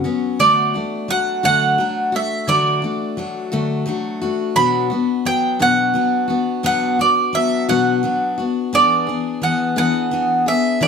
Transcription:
0.04 steel-string acoustic guitar F#3 B3 C#4 F#4
0.39 steel-string acoustic guitar D3 F#3 A3 D4 F#4, mandolin D5
0.74 steel-string acoustic guitar A3 D4 F#4
1.08 steel-string acoustic guitar F#3 A3 D4 F#4, mandolin F#5
1.43 steel-string acoustic guitar D3 F#3 A3 D4 F#4, mandolin F#5
1.78 steel-string acoustic guitar F#3 A3 D4 F#4
2.12 steel-string acoustic guitar A3 D4 F#4, mandolin E5
2.48 steel-string acoustic guitar D3 F#3 A3 D4 F#4, mandolin D5
2.82 steel-string acoustic guitar A3 D4 F#4
3.17 steel-string acoustic guitar F#3 A3 D4 F#4
3.52 steel-string acoustic guitar D3 F#3 A3 D4 F#4
3.86 steel-string acoustic guitar F#3 A3 D4 F#4
4.22 steel-string acoustic guitar A3 D4 F#4
4.56 steel-string acoustic guitar B2 F#3 B3 D4 F#4, mandolin B5
4.90 steel-string acoustic guitar B3 D4 F#4
5.25 steel-string acoustic guitar F#3 B3 D4, mandolin G5
5.59 steel-string acoustic guitar B2 F#3 B3 D4 F#4, mandolin F#5
5.94 steel-string acoustic guitar F#3 B3 D4 F#4
6.28 steel-string acoustic guitar B3 D4 F#4
6.63 steel-string acoustic guitar B2 F#3 B3 D4 F#4, mandolin F#5
6.99 steel-string acoustic guitar B3 D4 F#4, mandolin D5
7.33 steel-string acoustic guitar F#3 B3 D4 F#4, mandolin E5
7.69 steel-string acoustic guitar B2 F#3 B3 D4 F#4, mandolin F#5
8.03 steel-string acoustic guitar F#3 B3 D4 F#4
8.38 steel-string acoustic guitar B3 D4 F#4
8.73 steel-string acoustic guitar E3 B3 D4 G#4, mandolin D5
9.07 steel-string acoustic guitar B3 D4 G#4
9.42 steel-string acoustic guitar E3 B3 D4 G#4, mandolin F#5
9.76 steel-string acoustic guitar E3 B3 D4 G#4, mandolin F#5
10.11 steel-string acoustic guitar E3 B3 D4 G#4
10.46 steel-string acoustic guitar B3 D4 G#4, mandolin E5
10.81 steel-string acoustic guitar E3 B3 D4 G#4, mandolin D5

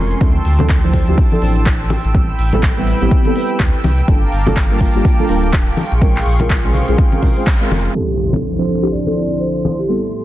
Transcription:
Already playing: sub bass F1, synth stab G#3 C4 C#4 F4 A#4, analog synth pad G#5 C6 C#6
0.11 closed hi-hat
0.21 sub bass D2, synth stab F3 C4 D4 E4 A4, violin section G5, analog synth pad A5 E6, kick, closed hi-hat
0.45 sub bass D2, open hi-hat
0.59 synth stab F3 C4 D4 E4 A4, closed hi-hat, high conga, low conga
0.69 kick, clap, closed hi-hat
0.83 synth stab F3 C4 D4 E4 C5, open hi-hat
0.94 kick, open hi-hat
1.07 sub bass D2, synth stab F3 C4 D4 E4 G4, closed hi-hat
1.18 kick, closed hi-hat
1.32 synth stab F3 C4 D4 E4 A4, high conga
1.41 sub bass A1, synth stab F3 C4 D4 E4 C5, open hi-hat
1.56 closed hi-hat
1.66 kick, clap, closed hi-hat
1.81 closed hi-hat
1.90 open hi-hat, high conga
2.05 sub bass A1, closed hi-hat
2.14 synth stab G3 B3 C4 E4 A4, analog synth pad G5 B5, kick, closed hi-hat
2.39 sub bass A1, open hi-hat
2.53 synth stab G3 B3 C4 E4 A4, closed hi-hat, high conga, low conga
2.63 kick, clap, closed hi-hat
2.77 synth stab G3 B3 C4 E4 B4, open hi-hat
2.87 open hi-hat
3.01 sub bass A1, synth stab G3 B3 C4 E4 G4, closed hi-hat
3.11 kick, closed hi-hat
3.25 synth stab G3 B3 C4 E4 A4, high conga
3.35 synth stab G3 B3 C4 E4 B4, open hi-hat
3.50 closed hi-hat
3.60 sub bass D2, kick, clap, closed hi-hat
3.74 closed hi-hat
3.84 sub bass C2, open hi-hat, high conga
3.98 closed hi-hat
4.08 sub bass G1, synth stab G3 A#3 D4 F4 A4, analog synth pad F5 A5 A#5 D6, kick, closed hi-hat
4.32 sub bass G1, open hi-hat
4.46 synth stab G3 A#3 D4 F4 A4, closed hi-hat, high conga, low conga
4.56 kick, clap, closed hi-hat
4.70 synth stab G3 A#3 D4 F4 A#4, open hi-hat
4.81 kick, open hi-hat
4.95 sub bass G1, synth stab G3 A#3 D4 F4 G4, closed hi-hat
5.05 kick, closed hi-hat
5.19 synth stab G3 A#3 D4 F4 A4, high conga
5.29 sub bass D1, synth stab G3 A#3 D4 F4 A#4, open hi-hat
5.43 closed hi-hat
5.53 kick, clap, closed hi-hat
5.68 closed hi-hat
5.77 analog synth pad G#4 F5 C6 C#6, open hi-hat, high conga
5.92 sub bass A#1, closed hi-hat
6.01 synth stab G#3 C4 C#4 F4 A#4, kick, closed hi-hat
6.16 clap
6.26 sub bass A#1, open hi-hat
6.40 synth stab G#3 C4 C#4 F4 A#4, closed hi-hat, high conga, low conga
6.50 kick, clap, closed hi-hat
6.64 synth stab G#3 C4 C#4 F4 C5, open hi-hat
6.74 open hi-hat, low conga
6.88 sub bass A#1, synth stab G#3 C4 C#4 F4 G#4, closed hi-hat
6.98 kick, closed hi-hat
7.12 synth stab G#3 C4 C#4 F4 A#4, closed hi-hat, high conga
7.22 synth stab G#3 C4 C#4 F4 A#4, kick, open hi-hat, low conga
7.36 synth stab G#3 C4 C#4 F4 C5, open hi-hat
7.47 kick, clap
7.61 synth stab G#3 C4 C#4 F4 A#4, closed hi-hat
7.71 sub bass F1, open hi-hat, high conga
7.85 closed hi-hat
7.95 analog synth pad D3 F3 E4 A4 C5, synth stab F3 C4 D4 E4 A4, vibraphone G4, violin section C6, impact
8.33 synth stab F3 C4 D4 E4 A4, vibraphone A4, high conga, low conga
8.57 synth stab F3 C4 D4 E4 C5
8.82 synth stab F3 C4 D4 E4 G4
8.92 vibraphone D5
9.06 synth stab F3 C4 D4 E4 A4, high conga
9.15 synth stab F3 C4 D4 E4 C5
9.40 vibraphone C5
9.65 high conga
9.79 vibraphone G4
9.88 analog synth pad A2 G4 A4, synth stab G3 B3 C4 E4 A4, vibraphone A4

